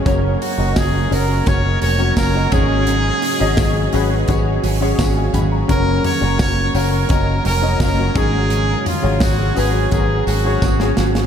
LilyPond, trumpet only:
\new Staff \with { instrumentName = "Trumpet" } { \time 4/4 \key fis \major \tempo 4 = 85 r8 fis'8 gis'8 ais'8 cis''8 cis''8 ais'8 gis'8~ | gis'2 r2 | ais'8 cis''8 cis''8 ais'8 ais'8 ais'8 ais'8 gis'8~ | gis'8 eis'8 fis'8 gis'8 gis'8 fis'4 r8 | }